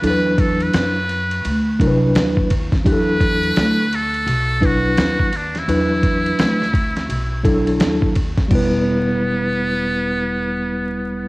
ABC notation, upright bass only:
X:1
M:4/4
L:1/8
Q:"Swing 16ths" 1/4=85
K:Em
V:1 name="Upright bass" clef=bass
E,,2 F,,2 D,, C,, ^D,,2 | E,,2 D,,2 B,,,2 ^D,,2 | E,,2 D,,2 B,,,2 ^D,,2 | E,,,8 |]